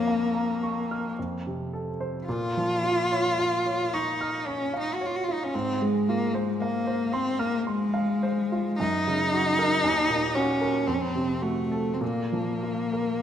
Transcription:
0.00 1.13 F2 medium
0.00 1.19 F3 soft
0.00 1.13 A#3 medium
0.00 1.19 A#4 soft
0.00 0.24 C#5 soft
0.07 0.51 F5 soft
0.34 0.79 A#5 soft
0.63 1.07 C#6 soft
0.91 1.18 F6 soft
1.19 2.24 F2 soft
1.47 1.89 C3 soft
1.74 2.16 A4 soft
2.01 2.27 C5 soft
2.26 5.50 A#2 soft
2.26 3.96 F4 medium
2.57 3.01 F3 soft
2.84 3.28 F4 soft
3.12 3.56 C#5 soft
3.39 3.83 F5 soft
3.66 4.10 C#5 soft
3.94 4.49 D#4 medium
3.94 4.36 C#6 soft
4.21 4.63 F6 soft
4.47 4.79 C#4 medium
4.47 4.90 C#6 soft
4.74 5.16 F5 soft
4.80 4.96 D#4 medium
4.95 5.07 F#4 medium
5.01 5.43 C#5 soft
5.06 5.18 F4 medium
5.16 5.25 F#4 medium
5.24 5.35 F4 soft
5.28 5.54 F4 soft
5.33 5.45 D#4 medium
5.44 5.56 C#4 medium
5.55 8.76 G#2 soft
5.55 5.83 C4 medium
5.81 6.11 G#3 medium
5.81 6.24 G#3 soft
6.09 6.37 A#3 medium
6.09 6.50 F4 soft
6.34 6.62 G#3 medium
6.34 6.76 C5 soft
6.60 7.14 A#3 medium
6.60 7.03 F5 soft
6.87 7.28 C5 soft
7.13 7.41 C4 medium
7.13 7.55 C6 soft
7.39 7.67 A#3 medium
7.39 7.82 F6 soft
7.66 8.78 G#3 medium
7.66 8.11 C6 soft
7.94 8.40 F5 soft
8.23 8.68 C5 soft
8.52 8.80 F4 soft
8.79 9.81 F#2 medium
8.79 10.36 D#4 medium
9.07 9.48 C#3 soft
9.33 9.73 F#4 soft
9.59 9.84 A#4 soft
9.84 10.84 D#2 medium
10.10 10.50 A#2 soft
10.35 10.89 C#4 medium
10.35 10.77 F#4 soft
10.61 10.87 A#4 soft
10.87 11.98 F2 soft
10.87 10.96 C4 medium
10.94 11.02 C#4 medium
11.01 11.44 C4 medium
11.15 11.60 C3 soft
11.42 11.95 A3 medium
11.42 11.89 F#4 soft
11.72 12.02 A4 soft
11.94 12.03 C4 soft
12.01 13.22 A#2 soft
12.01 13.22 A#3 medium
12.32 12.82 F3 soft
12.63 13.13 F4 soft
12.93 13.22 A#4 soft

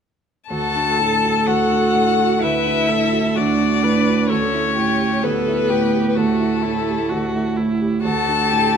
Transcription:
0.50 1.46 D2 soft
0.50 1.00 F#4 soft
0.50 1.49 A4 medium
0.50 1.49 A5 medium
0.75 1.14 D4 soft
0.99 1.37 A2 soft
0.99 2.44 A4 soft
1.24 1.61 F#4 soft
1.47 2.40 D2 soft
1.47 2.41 F#4 soft
1.47 2.44 F#5 medium
1.71 2.09 D4 soft
1.95 2.32 A2 soft
2.20 2.57 F#4 soft
2.39 3.35 D2 soft
2.39 3.38 E4 medium
2.39 2.90 B4 soft
2.39 3.38 E5 medium
2.65 3.03 D4 soft
2.89 3.26 A2 soft
2.89 3.37 A4 soft
3.13 3.50 F#4 soft
3.35 4.28 D2 soft
3.35 4.30 D4 soft
3.35 3.84 F#4 soft
3.35 4.30 D5 medium
3.61 3.98 D4 soft
3.83 4.21 A2 soft
3.83 4.31 B4 soft
4.08 4.31 F#4 soft
4.29 5.22 D2 soft
4.29 5.25 C#4 soft
4.29 4.76 A4 soft
4.29 5.24 C#5 medium
4.54 4.91 E4 soft
4.76 5.14 A2 soft
4.76 5.24 G4 soft
5.00 5.37 G4 soft
5.23 6.16 D2 soft
5.23 6.18 B3 soft
5.23 5.71 A4 soft
5.23 6.08 B4 medium
5.48 5.84 E4 soft
5.70 6.08 A2 soft
5.70 6.17 G4 soft
5.94 6.31 G4 soft
6.09 6.18 B4 soft
6.15 7.10 D2 soft
6.15 7.57 A3 soft
6.15 6.64 F#4 soft
6.15 7.56 A4 medium
6.41 6.77 E4 soft
6.62 7.01 A2 soft
6.62 7.11 E4 soft
6.88 7.25 G4 soft
7.09 8.01 D2 soft
7.09 7.57 F#4 soft
7.36 7.72 E4 soft
7.56 7.95 A2 soft
7.56 8.02 E4 soft
7.81 8.04 G4 soft
8.02 8.77 D2 soft
8.02 8.50 F#4 soft
8.02 8.77 A4 medium
8.02 8.77 A5 medium
8.28 8.65 D4 soft
8.49 8.77 A2 soft
8.49 8.77 G4 soft

